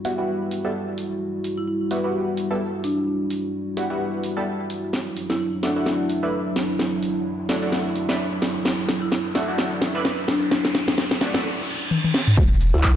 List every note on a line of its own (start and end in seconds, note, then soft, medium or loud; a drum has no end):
0.00 4.89 G3 medium
0.00 4.89 E4 medium
0.00 4.89 F#4 medium
0.05 0.12 G3 medium
0.05 0.12 B3 medium
0.05 0.12 E4 medium
0.05 0.12 F#4 medium
0.05 open hi-hat loud
0.18 0.61 G3 medium
0.18 0.61 B3 medium
0.18 0.61 E4 medium
0.18 0.61 F#4 medium
0.51 open hi-hat loud
0.65 0.70 G3 medium
0.65 0.70 B3 medium
0.65 0.70 E4 medium
0.65 0.70 A4 loud
0.98 open hi-hat loud
1.44 open hi-hat loud
1.58 1.64 E4 medium
1.68 1.76 E4 medium
1.91 1.98 G3 medium
1.91 1.98 B3 medium
1.91 1.98 E4 medium
1.91 1.98 F#4 medium
1.91 open hi-hat loud
2.04 2.48 G3 medium
2.04 2.47 B3 medium
2.04 2.48 E4 medium
2.04 2.48 F#4 medium
2.37 open hi-hat loud
2.51 2.56 G3 medium
2.51 2.56 B3 medium
2.51 2.56 E4 medium
2.51 2.56 A4 loud
2.84 3.50 D4 medium
2.84 open hi-hat loud
3.30 open hi-hat loud
3.77 3.84 G3 medium
3.77 3.84 B3 medium
3.77 3.84 E4 medium
3.77 3.84 F#4 medium
3.77 open hi-hat loud
3.90 4.34 G3 medium
3.90 4.34 B3 medium
3.90 4.34 E4 medium
3.90 4.34 F#4 medium
4.24 open hi-hat loud
4.37 4.42 G3 medium
4.37 4.42 B3 medium
4.37 4.42 E4 medium
4.37 4.42 A4 loud
4.70 open hi-hat loud
4.93 11.40 F#3 medium
4.93 11.40 D4 medium
4.93 11.40 E4 medium
4.93 snare soft
4.93 riser medium
5.17 open hi-hat loud
5.30 5.36 E4 medium
5.30 snare soft
5.40 5.48 E4 medium
5.63 5.70 A3 medium
5.63 6.10 D4 medium
5.63 5.70 D4 medium
5.63 5.70 E4 medium
5.63 5.70 F#4 medium
5.63 snare soft
5.63 open hi-hat loud
5.76 6.20 A3 medium
5.76 6.20 D4 medium
5.76 6.20 E4 medium
5.76 6.20 F#4 medium
5.86 snare medium
6.10 open hi-hat loud
6.23 6.28 A3 medium
6.23 6.28 D4 medium
6.23 6.28 E4 medium
6.23 6.28 B4 loud
6.56 snare medium
6.56 open hi-hat loud
6.79 snare medium
7.03 open hi-hat loud
7.49 7.56 A3 medium
7.49 7.56 D4 medium
7.49 7.56 E4 medium
7.49 7.56 F#4 medium
7.49 snare medium
7.49 open hi-hat loud
7.62 8.06 A3 medium
7.62 8.06 D4 medium
7.62 8.06 E4 medium
7.62 8.06 F#4 medium
7.72 snare medium
7.96 open hi-hat loud
8.09 8.14 A3 medium
8.09 8.14 D4 medium
8.09 8.14 E4 medium
8.09 8.14 B4 loud
8.09 snare medium
8.42 snare medium
8.42 open hi-hat loud
8.65 snare medium
8.89 snare medium
8.89 open hi-hat loud
9.02 9.08 E4 medium
9.12 snare medium
9.35 9.42 A3 medium
9.35 9.42 D4 medium
9.35 9.42 E4 medium
9.35 9.42 F#4 loud
9.35 snare medium
9.35 open hi-hat loud
9.48 9.92 A3 medium
9.48 9.92 D4 medium
9.48 9.92 E4 medium
9.48 9.92 F#4 medium
9.58 snare medium
9.82 snare medium
9.82 open hi-hat loud
9.95 10.00 A3 loud
9.95 10.00 D4 medium
9.95 10.00 E4 medium
9.95 10.00 B4 loud
10.05 snare medium
10.28 10.94 D4 medium
10.28 snare medium
10.28 open hi-hat loud
10.51 snare medium
10.65 snare medium
10.75 snare loud
10.75 open hi-hat loud
10.88 snare medium
10.98 snare loud
11.11 snare medium
11.21 11.28 A3 medium
11.21 11.28 D4 medium
11.21 11.28 E4 medium
11.21 11.28 F#4 medium
11.21 snare loud
11.21 open hi-hat loud
11.34 11.44 A3 medium
11.34 11.44 D4 medium
11.34 11.44 E4 medium
11.34 11.44 F#4 medium
11.34 snare medium
11.44 reverse cymbal medium
11.91 high tom medium
12.04 high tom medium
12.14 snare medium
12.28 mid tom medium
12.37 12.72 E1 loud
12.37 12.96 G3 medium
12.37 12.96 E4 medium
12.37 12.96 F#4 medium
12.37 kick loud
12.37 crash loud
12.37 impact medium
12.37 shaker soft
12.60 open hi-hat loud
12.60 shaker medium
12.74 12.96 D2 medium
12.74 12.80 E4 medium
12.74 shaker medium
12.83 12.93 E4 medium
12.83 kick loud
12.83 clap loud
12.83 shaker soft